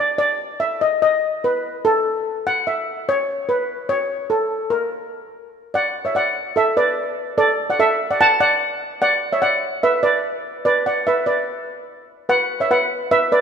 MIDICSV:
0, 0, Header, 1, 2, 480
1, 0, Start_track
1, 0, Tempo, 410116
1, 941, Time_signature, 4, 2, 24, 8
1, 15696, End_track
2, 0, Start_track
2, 0, Title_t, "Steel pan"
2, 0, Program_c, 0, 114
2, 0, Note_on_c, 0, 74, 90
2, 202, Note_off_c, 0, 74, 0
2, 216, Note_on_c, 0, 74, 86
2, 702, Note_on_c, 0, 76, 85
2, 713, Note_off_c, 0, 74, 0
2, 949, Note_off_c, 0, 76, 0
2, 952, Note_on_c, 0, 75, 78
2, 1183, Note_off_c, 0, 75, 0
2, 1197, Note_on_c, 0, 75, 76
2, 1685, Note_off_c, 0, 75, 0
2, 1689, Note_on_c, 0, 71, 78
2, 2163, Note_on_c, 0, 69, 83
2, 2171, Note_off_c, 0, 71, 0
2, 2602, Note_off_c, 0, 69, 0
2, 2887, Note_on_c, 0, 78, 94
2, 3101, Note_off_c, 0, 78, 0
2, 3126, Note_on_c, 0, 76, 76
2, 3612, Note_off_c, 0, 76, 0
2, 3613, Note_on_c, 0, 73, 83
2, 4081, Note_on_c, 0, 71, 68
2, 4096, Note_off_c, 0, 73, 0
2, 4555, Note_on_c, 0, 73, 85
2, 4570, Note_off_c, 0, 71, 0
2, 5031, Note_on_c, 0, 69, 76
2, 5047, Note_off_c, 0, 73, 0
2, 5505, Note_on_c, 0, 70, 69
2, 5526, Note_off_c, 0, 69, 0
2, 6422, Note_off_c, 0, 70, 0
2, 6720, Note_on_c, 0, 74, 69
2, 6732, Note_on_c, 0, 78, 89
2, 7056, Note_off_c, 0, 74, 0
2, 7078, Note_on_c, 0, 73, 58
2, 7091, Note_on_c, 0, 76, 66
2, 7099, Note_off_c, 0, 78, 0
2, 7184, Note_off_c, 0, 73, 0
2, 7199, Note_on_c, 0, 74, 72
2, 7201, Note_off_c, 0, 76, 0
2, 7211, Note_on_c, 0, 78, 92
2, 7641, Note_off_c, 0, 74, 0
2, 7678, Note_on_c, 0, 69, 74
2, 7691, Note_on_c, 0, 76, 95
2, 7695, Note_off_c, 0, 78, 0
2, 7898, Note_off_c, 0, 69, 0
2, 7905, Note_off_c, 0, 76, 0
2, 7920, Note_on_c, 0, 71, 71
2, 7924, Note_on_c, 0, 74, 80
2, 8588, Note_off_c, 0, 71, 0
2, 8621, Note_off_c, 0, 74, 0
2, 8633, Note_on_c, 0, 69, 80
2, 8635, Note_on_c, 0, 74, 101
2, 8972, Note_off_c, 0, 69, 0
2, 8993, Note_off_c, 0, 74, 0
2, 9007, Note_on_c, 0, 74, 60
2, 9014, Note_on_c, 0, 78, 84
2, 9056, Note_off_c, 0, 74, 0
2, 9061, Note_off_c, 0, 78, 0
2, 9123, Note_on_c, 0, 69, 74
2, 9126, Note_on_c, 0, 76, 105
2, 9456, Note_off_c, 0, 69, 0
2, 9487, Note_on_c, 0, 74, 71
2, 9488, Note_on_c, 0, 78, 75
2, 9494, Note_off_c, 0, 76, 0
2, 9587, Note_off_c, 0, 74, 0
2, 9591, Note_off_c, 0, 78, 0
2, 9605, Note_on_c, 0, 78, 98
2, 9605, Note_on_c, 0, 81, 119
2, 9820, Note_off_c, 0, 78, 0
2, 9835, Note_on_c, 0, 74, 85
2, 9837, Note_on_c, 0, 78, 92
2, 9843, Note_off_c, 0, 81, 0
2, 10277, Note_off_c, 0, 74, 0
2, 10278, Note_off_c, 0, 78, 0
2, 10553, Note_on_c, 0, 78, 104
2, 10558, Note_on_c, 0, 74, 84
2, 10893, Note_off_c, 0, 74, 0
2, 10914, Note_on_c, 0, 76, 81
2, 10920, Note_on_c, 0, 73, 66
2, 10927, Note_off_c, 0, 78, 0
2, 11022, Note_off_c, 0, 73, 0
2, 11024, Note_on_c, 0, 78, 98
2, 11030, Note_off_c, 0, 76, 0
2, 11032, Note_on_c, 0, 74, 73
2, 11475, Note_off_c, 0, 74, 0
2, 11508, Note_on_c, 0, 76, 94
2, 11512, Note_on_c, 0, 71, 75
2, 11518, Note_off_c, 0, 78, 0
2, 11732, Note_off_c, 0, 71, 0
2, 11738, Note_on_c, 0, 74, 94
2, 11748, Note_on_c, 0, 71, 64
2, 11753, Note_off_c, 0, 76, 0
2, 12418, Note_off_c, 0, 71, 0
2, 12452, Note_off_c, 0, 74, 0
2, 12466, Note_on_c, 0, 74, 96
2, 12475, Note_on_c, 0, 71, 73
2, 12692, Note_off_c, 0, 71, 0
2, 12707, Note_off_c, 0, 74, 0
2, 12713, Note_on_c, 0, 78, 76
2, 12721, Note_on_c, 0, 74, 63
2, 12935, Note_off_c, 0, 74, 0
2, 12953, Note_on_c, 0, 76, 81
2, 12954, Note_off_c, 0, 78, 0
2, 12965, Note_on_c, 0, 71, 71
2, 13171, Note_off_c, 0, 76, 0
2, 13177, Note_off_c, 0, 71, 0
2, 13183, Note_on_c, 0, 74, 68
2, 13192, Note_on_c, 0, 71, 56
2, 13628, Note_off_c, 0, 74, 0
2, 13632, Note_off_c, 0, 71, 0
2, 14384, Note_on_c, 0, 71, 70
2, 14390, Note_on_c, 0, 78, 98
2, 14722, Note_off_c, 0, 71, 0
2, 14750, Note_on_c, 0, 73, 58
2, 14759, Note_on_c, 0, 76, 79
2, 14761, Note_off_c, 0, 78, 0
2, 14853, Note_off_c, 0, 73, 0
2, 14868, Note_off_c, 0, 76, 0
2, 14873, Note_on_c, 0, 71, 72
2, 14877, Note_on_c, 0, 78, 93
2, 15311, Note_off_c, 0, 71, 0
2, 15348, Note_on_c, 0, 71, 78
2, 15349, Note_on_c, 0, 76, 108
2, 15360, Note_off_c, 0, 78, 0
2, 15565, Note_off_c, 0, 71, 0
2, 15588, Note_off_c, 0, 76, 0
2, 15589, Note_on_c, 0, 71, 75
2, 15594, Note_on_c, 0, 74, 88
2, 15696, Note_off_c, 0, 71, 0
2, 15696, Note_off_c, 0, 74, 0
2, 15696, End_track
0, 0, End_of_file